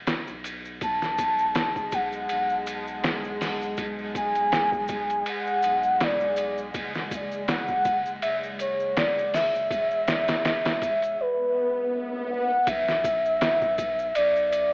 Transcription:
0.07 sub bass E1, snare, ride, maracas
0.27 sub bass B1, maracas
0.44 ride, maracas
0.65 maracas
0.81 sub bass B1, synth drone G#3, soft synth lead A5, kick, ride, maracas
1.02 snare, maracas
1.18 kick, ride, maracas
1.39 maracas
1.55 snare, ride, maracas
1.76 kick, maracas
1.92 soft synth lead F#5, kick, ride, maracas
2.12 maracas
2.29 sub bass B1, ride, maracas
2.49 maracas
2.67 ride, maracas
2.87 maracas
3.03 snare, ride, maracas
3.24 maracas
3.41 snare, open hi-hat, maracas
3.62 maracas
3.77 sub bass B1, kick, ride, maracas
3.99 maracas
4.15 soft synth lead G#5, kick, ride, maracas
4.35 ride, maracas
4.52 snare, ride, maracas
4.72 kick, maracas
4.88 kick, ride, maracas
5.10 ride, maracas
5.26 soft synth lead F#5, ride, maracas
5.47 maracas
5.62 sub bass B1, ride, maracas
5.83 maracas
6.00 soft synth lead D5, snare, ride, maracas
6.20 maracas
6.36 ride, maracas
6.58 maracas
6.74 sub bass F#1, kick, ride, maracas
6.95 snare, maracas
7.11 kick, ride, maracas
7.32 maracas
7.48 soft synth lead F#5, snare, ride, maracas
7.68 kick, maracas
7.85 kick, ride, maracas
8.06 maracas
8.22 sub bass F#1, soft synth lead E5, ride, maracas
8.44 maracas
8.59 soft synth lead C#5, ride, maracas
8.80 maracas
8.96 soft synth lead D5, snare, ride, maracas
9.18 maracas
9.33 soft synth lead E5, snare, open hi-hat, maracas
9.55 maracas
9.70 sub bass E1, kick, ride, maracas
9.91 maracas
10.08 snare, ride, maracas
10.28 snare, ride, maracas
10.45 snare, ride, maracas
10.65 snare, ride, maracas
10.81 soft synth lead E5, kick, ride, maracas
11.02 ride, maracas
11.18 soft synth lead B4, swell
12.31 soft synth lead F#5
12.67 sub bass B1, soft synth lead E5, kick, ride, maracas
12.88 snare, maracas
13.04 kick, ride, maracas
13.25 maracas
13.41 snare, ride, maracas
13.61 kick, maracas
13.78 kick, ride, maracas
13.99 maracas
14.15 sub bass B1, soft synth lead D5, ride, maracas
14.36 maracas
14.51 soft synth lead D5, ride, maracas

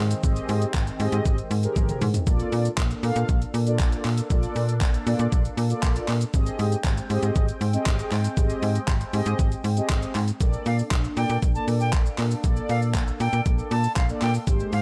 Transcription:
Already playing: analog synth pad D#3 G#3 C4
0.00 fm bass G#2
0.11 closed hi-hat, shaker
0.23 fm bass G#1, analog polysynth C4 G4 G#4 D#5, kick, shaker
0.36 closed hi-hat, shaker
0.49 fm bass G#2, open hi-hat, shaker
0.62 closed hi-hat, shaker
0.74 fm bass G#1, kick, clap, shaker
0.87 closed hi-hat, shaker
1.00 fm bass G#2, analog polysynth C4 G4 G#4 D#5, open hi-hat, shaker
1.12 fm bass G#2, closed hi-hat, shaker
1.25 fm bass G#1, kick, shaker
1.38 closed hi-hat, shaker
1.51 fm bass G#2, open hi-hat, shaker
1.63 analog polysynth C4 G4 G#4 A#4, closed hi-hat, shaker
1.76 fm bass G#1, kick, high tom, shaker
1.89 closed hi-hat, mid tom, shaker
2.01 fm bass G#2, mid tom, open hi-hat, shaker
2.14 closed hi-hat, floor tom, shaker
2.27 fm bass A#1, analog polysynth A#3 F4 A4 D5, analog synth pad A#3 D4 A4, kick, shaker
2.40 closed hi-hat, shaker
2.52 fm bass A#2, open hi-hat, shaker
2.65 closed hi-hat, shaker
2.78 fm bass A#1, kick, clap, shaker
2.91 closed hi-hat, shaker
3.03 fm bass A#2, analog polysynth A#3 F4 A4 F5, open hi-hat, shaker
3.16 fm bass A#2, closed hi-hat, shaker
3.29 fm bass A#1, kick, shaker
3.42 closed hi-hat, shaker
3.54 fm bass A#2, open hi-hat, shaker
3.67 analog polysynth A#3 F4 A4 D5, closed hi-hat, shaker
3.80 fm bass A#1, kick, clap, shaker
3.92 closed hi-hat, shaker
4.05 fm bass A#2, clap, open hi-hat, shaker
4.18 closed hi-hat, shaker
4.30 fm bass A#1, analog polysynth A#3 F4 A4 D5, kick, shaker
4.43 closed hi-hat, shaker
4.56 fm bass A#2, open hi-hat, shaker
4.69 closed hi-hat, shaker
4.81 fm bass A#1, kick, clap, shaker
4.94 closed hi-hat, shaker
5.06 fm bass A#2, analog polysynth A#3 F4 A4 D5, open hi-hat, shaker
5.19 fm bass A#2, closed hi-hat, shaker
5.32 fm bass A#1, kick, shaker
5.45 closed hi-hat, shaker
5.57 fm bass A#2, open hi-hat, shaker
5.70 analog polysynth A#3 F4 A4 D5, closed hi-hat, shaker
5.83 fm bass A#1, kick, clap, shaker
5.96 closed hi-hat, shaker
6.08 fm bass A#2, clap, open hi-hat, shaker
6.21 closed hi-hat, shaker
6.33 fm bass G#1, analog synth pad G#3 C4 G5, analog polysynth C4 G4 G#4 D#5, kick, shaker
6.46 closed hi-hat, shaker
6.59 fm bass G#2, open hi-hat, shaker
6.72 closed hi-hat, shaker
6.84 fm bass G#1, kick, clap, shaker
6.97 closed hi-hat, shaker
7.10 fm bass G#2, analog polysynth C4 G4 G#4 D#5, open hi-hat, shaker
7.23 fm bass G#2, closed hi-hat, shaker
7.36 fm bass G#1, kick, shaker
7.48 closed hi-hat, shaker
7.61 fm bass G#2, open hi-hat, shaker
7.73 analog polysynth C4 G4 G#4 D#5, closed hi-hat, shaker
7.86 fm bass G#1, kick, clap, shaker
7.99 closed hi-hat, shaker
8.12 fm bass G#2, clap, open hi-hat, shaker
8.24 closed hi-hat, shaker
8.37 fm bass G#1, analog polysynth C4 G4 G#4 D#5, kick, shaker
8.50 closed hi-hat, shaker
8.62 fm bass G#2, open hi-hat, shaker
8.75 closed hi-hat, shaker
8.88 fm bass G#1, kick, clap, shaker
9.01 closed hi-hat, shaker
9.13 fm bass G#2, analog polysynth C4 G4 G#4 D#5, open hi-hat, shaker
9.26 fm bass G#2, closed hi-hat, shaker
9.39 fm bass G#1, kick, shaker
9.52 closed hi-hat, shaker
9.64 fm bass G#2, open hi-hat, shaker
9.77 analog polysynth C4 G4 G#4 D#5, closed hi-hat, shaker
9.90 fm bass G#1, kick, clap, shaker
10.03 closed hi-hat, shaker
10.15 fm bass G#2, clap, open hi-hat, shaker
10.28 closed hi-hat, shaker
10.40 fm bass A#1, analog polysynth A#3 A4 D5, analog synth pad A#3 D4 A4, kick, closed hi-hat, shaker
10.53 shaker
10.66 fm bass A#2, flute F5, open hi-hat, shaker
10.79 shaker
10.91 fm bass A#1, kick, clap, closed hi-hat, shaker
11.04 shaker
11.16 fm bass A#2, analog polysynth A#3 A4 D5, flute G5, open hi-hat, shaker
11.29 fm bass A#2, shaker
11.42 fm bass A#1, kick, closed hi-hat, shaker
11.55 analog polysynth A#3 A4 D5, flute A5, shaker
11.68 fm bass A#2, open hi-hat, shaker
11.80 flute G5, shaker
11.93 fm bass A#1, kick, clap, closed hi-hat, shaker
12.06 shaker
12.18 fm bass A#2, clap, open hi-hat, shaker
12.31 shaker
12.44 fm bass A#1, analog polysynth A#3 A4 D5, kick, closed hi-hat, shaker
12.57 shaker
12.69 fm bass A#2, flute F5, open hi-hat, shaker
12.82 shaker
12.95 fm bass A#1, kick, clap, closed hi-hat, shaker
13.08 shaker
13.20 fm bass A#2, flute G5, open hi-hat, shaker
13.33 fm bass A#2, shaker
13.45 fm bass A#1, analog polysynth A#3 A4 D5, kick, closed hi-hat, shaker
13.59 shaker
13.71 fm bass A#2, flute A5, open hi-hat, shaker
13.84 shaker
13.96 fm bass A#1, flute F5, kick, clap, closed hi-hat, shaker
14.09 analog polysynth A#3 A4 D5, shaker
14.22 fm bass A#2, flute G5, clap, open hi-hat, shaker
14.34 shaker
14.47 fm bass G#1, analog polysynth G#3 G4 C5, analog synth pad G#3 C4 G4, kick, closed hi-hat, shaker
14.60 shaker
14.73 fm bass G#2, flute F5, open hi-hat, shaker

